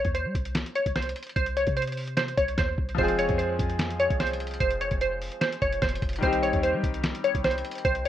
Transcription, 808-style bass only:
0.05 0.27 D#2 loud
0.25 0.34 G3 loud
0.35 0.65 C2 loud
0.86 1.15 C2 loud
1.36 1.66 C2 loud
1.67 2.35 C3 loud
2.38 2.57 C2 loud
2.58 2.77 D#2 loud
2.78 2.97 C2 loud
2.98 3.28 F1 loud
3.29 3.58 F2 loud
3.59 4.08 F2 loud
4.10 4.58 C2 loud
4.60 4.90 F1 loud
4.91 5.30 F1 loud
5.62 5.81 F1 loud
5.82 6.02 F1 loud
6.02 6.22 F1 loud
6.23 6.44 C2 loud
6.43 6.53 A#1 loud
6.54 6.75 D#2 loud
6.74 6.83 G3 loud
6.84 7.13 C2 loud
7.35 7.63 C2 loud
7.85 8.08 C2 loud

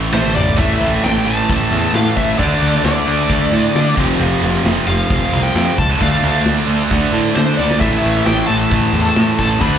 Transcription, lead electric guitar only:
0.13 0.36 C5 medium
0.35 0.56 D5 medium
0.59 1.05 E5 medium
1.04 1.24 G5 loud
1.27 1.90 A5 loud
1.94 2.16 F5 medium
2.17 2.37 E5 medium
2.39 2.81 D5 medium
2.84 3.93 D5 medium
4.87 5.45 F5 medium
5.43 5.78 G5 loud
5.79 6.01 A5 loud
6.02 6.43 F5 medium
7.36 7.59 C5 medium
7.57 7.79 D5 medium
7.80 8.22 E5 loud
8.26 8.47 G5 medium
8.47 9.38 A5 loud
9.39 9.62 A5 loud
9.61 9.78 B5 loud

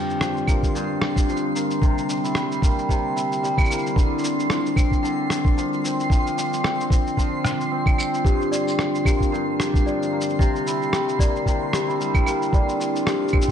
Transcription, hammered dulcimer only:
0.00 0.74 G2 medium
0.00 3.96 D3 medium
0.00 0.21 F3 medium
0.00 3.14 C4 medium
0.00 1.01 D4 medium
0.00 0.54 A4 medium
0.22 1.27 F3 medium
0.48 1.55 A#3 medium
0.75 1.87 G2 medium
1.02 2.08 D4 medium
1.28 1.87 F3 medium
1.55 2.62 A#3 medium
1.82 2.88 C3 medium
2.09 4.22 D4 medium
2.24 3.16 E4 soft
2.36 3.42 G3 medium
2.62 3.69 A#3 medium
2.89 4.01 C3 medium
3.16 4.56 E4 medium
3.43 4.01 G3 medium
3.70 7.98 A#3 medium
3.96 5.02 D3 medium
4.23 5.29 D4 medium
4.50 5.56 F3 medium
4.76 5.83 C4 medium
5.03 12.52 D3 medium
5.30 6.37 D4 medium
5.57 6.10 F3 medium
5.84 6.63 C4 medium
6.10 7.17 F3 medium
6.37 7.44 D4 medium
6.63 6.90 C4 medium
6.91 7.71 C4 medium
7.17 8.78 F3 medium
7.45 8.51 D4 medium
7.71 7.98 C4 medium
7.98 11.98 C4 medium
8.25 9.31 G2 medium
8.52 9.59 D4 medium
8.79 9.85 F3 medium
9.05 10.12 A#3 medium
9.32 10.44 G2 medium
9.59 11.73 D4 medium
9.86 10.44 F3 medium
10.12 11.19 A#3 medium
10.39 11.45 C3 medium
10.67 11.88 E4 medium
10.93 11.98 G3 medium
11.20 12.26 A#3 medium
11.47 12.58 C3 medium
11.73 12.79 D4 medium
11.88 13.12 E4 soft
12.00 12.58 G3 medium
12.26 13.51 A#3 medium
12.53 13.51 D3 medium
12.80 13.51 D4 medium
13.06 13.51 F3 medium
13.33 13.51 C4 medium

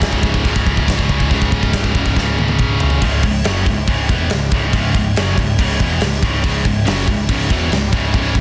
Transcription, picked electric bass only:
0.02 0.23 C#1 loud
0.23 0.44 C#1 medium
0.45 0.66 C#1 medium
0.67 0.87 C#1 loud
0.88 1.09 C#1 medium
1.10 1.30 C#2 medium
1.31 1.51 C#1 medium
1.52 1.73 C#1 medium
1.73 1.94 C#1 medium
1.95 2.16 C#1 medium
2.16 2.37 C#1 medium
2.39 2.58 C#1 medium
2.59 2.80 C#1 medium
2.83 3.01 C#2 medium
3.02 3.22 C#1 medium
3.23 3.43 C#1 medium
3.46 3.65 F#1 loud
3.67 3.86 C#1 medium
3.88 4.08 C#1 medium
4.09 4.29 E1 loud
4.32 4.51 C#1 medium
4.52 4.72 C#1 loud
4.73 4.93 C#1 loud
4.94 5.14 C#1 medium
5.18 5.37 F#1 medium
5.37 5.57 C#1 medium
5.59 5.79 C#1 medium
5.80 6.00 E1 loud
6.01 6.21 C#1 medium
6.22 6.42 C#1 loud
6.44 6.64 C#1 medium
6.65 6.85 C#1 medium
6.87 7.07 F#1 loud
7.08 7.28 C#1 medium
7.29 7.49 C#1 medium
7.50 7.70 E1 loud
7.72 7.92 C#1 medium
7.93 8.13 C#1 medium
8.14 8.34 C#1 loud
8.35 8.41 C#1 medium

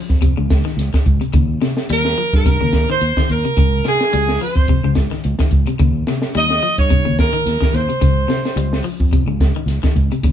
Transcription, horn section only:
1.92 2.31 A#4 loud
2.36 2.86 A#4 loud
2.90 3.27 C5 loud
3.31 3.86 A#4 medium
3.88 4.38 G#4 loud
4.43 4.93 C5 medium
6.37 6.77 D#5 loud
6.79 7.16 C#5 loud
7.19 7.70 A#4 loud
7.74 8.85 C5 medium

